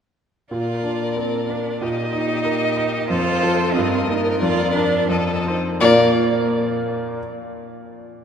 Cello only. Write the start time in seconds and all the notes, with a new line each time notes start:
0.52 F4
1.18 C4
1.50 D4
1.82 D#4
3.08 F4
3.73 C4
4.07 A#3
4.40 F4
4.73 D4
5.08 C4
5.80 A#3